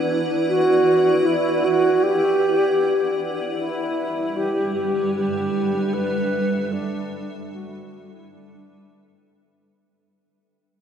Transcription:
0.00 5.05 E4 medium
0.00 9.92 B4 medium
0.00 6.09 D5 medium
0.00 6.09 F#5 medium
0.49 1.27 F#4 medium
1.26 1.66 E4 medium
1.64 2.05 F#4 medium
2.03 3.20 G4 medium
3.58 9.91 G3 medium
3.58 4.38 E4 medium
3.75 9.91 D4 medium
4.36 4.74 G4 medium
4.48 9.91 A4 medium
4.65 9.91 E5 medium
4.74 5.11 G4 medium
5.16 5.95 G4 medium
5.94 6.74 B4 loud
6.73 7.52 D4 medium
7.53 8.05 F#4 medium
8.05 8.14 F#4 medium
8.12 8.34 E4 medium
8.32 9.12 D4 medium

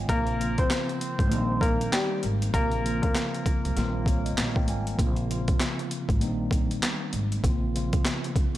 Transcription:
0.00 0.10 D#3 medium
0.00 0.11 G3 medium
0.00 0.09 A#3 medium
0.00 0.10 C4 medium
0.00 0.11 F4 loud
0.00 0.11 C#5 medium
0.00 0.10 D#5 medium
0.00 0.11 F5 medium
0.00 0.11 G5 medium
0.00 0.11 G#5 medium
0.07 0.63 A#1 loud
0.07 0.36 C#3 medium
0.07 0.37 F3 medium
0.07 0.37 A#3 medium
0.07 0.56 A#3 loud
0.07 0.37 C4 medium
0.07 0.55 A#4 loud
0.07 kick loud
0.07 closed hi-hat medium
0.27 closed hi-hat soft
0.38 1.31 C#3 medium
0.38 1.31 F3 medium
0.38 1.30 A#3 medium
0.38 1.31 C4 medium
0.38 1.32 F4 medium
0.38 closed hi-hat medium
0.58 1.59 C4 medium
0.58 1.58 C5 medium
0.58 kick medium
0.58 closed hi-hat medium
0.70 snare loud
0.70 clap medium
0.70 closed hi-hat loud
0.89 closed hi-hat soft
1.01 closed hi-hat medium
1.19 1.32 G#1 loud
1.19 kick loud
1.19 closed hi-hat soft
1.30 1.86 A#1 loud
1.30 2.43 D#3 medium
1.30 2.43 G3 medium
1.30 2.44 A#3 medium
1.30 2.44 C4 medium
1.30 2.44 D#4 loud
1.30 closed hi-hat medium
1.61 1.89 A#3 medium
1.61 1.89 A#4 medium
1.61 kick loud
1.61 closed hi-hat medium
1.81 closed hi-hat medium
1.92 2.20 G3 medium
1.92 2.20 G4 medium
1.92 snare loud
1.92 clap medium
1.92 closed hi-hat loud
2.23 2.51 G#1 medium
2.23 closed hi-hat medium
2.42 closed hi-hat medium
2.52 3.08 A#1 loud
2.52 2.81 C#3 medium
2.52 2.81 F3 medium
2.52 2.82 A#3 medium
2.52 3.00 A#3 medium
2.52 2.82 C4 medium
2.52 2.82 F4 medium
2.52 3.00 A#4 loud
2.52 kick loud
2.52 closed hi-hat medium
2.71 closed hi-hat soft
2.84 3.76 C#3 medium
2.84 3.76 F3 medium
2.84 3.76 A#3 medium
2.84 3.77 C4 medium
2.84 3.77 F4 medium
2.84 closed hi-hat medium
3.02 4.95 A#3 medium
3.02 4.94 A#4 medium
3.02 kick loud
3.02 closed hi-hat medium
3.15 snare loud
3.15 clap medium
3.15 closed hi-hat loud
3.34 closed hi-hat soft
3.46 kick medium
3.46 closed hi-hat medium
3.65 3.75 C2 medium
3.65 closed hi-hat soft
3.76 4.31 A#1 loud
3.76 4.88 D#3 medium
3.76 4.89 G3 medium
3.76 4.89 A#3 medium
3.76 4.89 C4 medium
3.76 4.90 F4 loud
3.76 snare soft
3.76 closed hi-hat medium
4.06 4.25 C#5 medium
4.06 kick loud
4.06 closed hi-hat medium
4.25 4.36 D#5 medium
4.25 closed hi-hat medium
4.36 4.69 A#1 medium
4.36 4.54 F5 medium
4.36 snare loud
4.36 clap medium
4.36 closed hi-hat loud
4.56 4.68 G5 medium
4.56 kick medium
4.68 4.95 G#1 medium
4.68 4.97 G#5 medium
4.68 closed hi-hat medium
4.87 closed hi-hat medium
4.97 5.53 A#1 loud
4.97 5.26 C#3 medium
4.97 5.26 F3 medium
4.97 5.27 A#3 medium
4.97 5.27 C4 medium
4.97 5.27 F4 medium
4.97 kick loud
4.97 closed hi-hat medium
5.16 closed hi-hat soft
5.28 6.21 C#3 medium
5.28 6.21 F3 medium
5.28 6.20 A#3 medium
5.28 6.21 C4 medium
5.28 6.22 F4 medium
5.28 closed hi-hat medium
5.48 kick medium
5.48 closed hi-hat medium
5.60 snare loud
5.60 clap medium
5.60 closed hi-hat loud
5.79 closed hi-hat soft
5.91 closed hi-hat medium
6.09 6.22 G#1 medium
6.09 kick medium
6.09 closed hi-hat soft
6.20 6.75 A#1 loud
6.20 7.33 D#3 medium
6.20 7.33 G3 medium
6.20 7.33 A#3 medium
6.20 7.34 C4 medium
6.20 7.34 D#4 loud
6.20 closed hi-hat medium
6.51 kick loud
6.51 closed hi-hat medium
6.71 closed hi-hat medium
6.83 snare loud
6.83 clap medium
6.83 closed hi-hat loud
7.13 7.40 G#1 medium
7.13 closed hi-hat medium
7.32 closed hi-hat medium
7.42 7.98 A#1 loud
7.42 7.71 C#3 medium
7.42 7.71 F3 medium
7.42 7.71 A#3 medium
7.42 7.72 C4 medium
7.42 7.72 F4 medium
7.42 kick loud
7.42 closed hi-hat medium
7.74 8.58 C#3 medium
7.74 8.58 F3 medium
7.74 8.58 A#3 medium
7.74 8.58 C4 medium
7.74 8.58 F4 medium
7.74 closed hi-hat medium
7.93 kick medium
7.93 closed hi-hat medium
8.05 snare loud
8.05 clap medium
8.05 closed hi-hat loud
8.24 closed hi-hat soft
8.36 kick medium
8.36 closed hi-hat medium
8.55 8.58 C2 medium

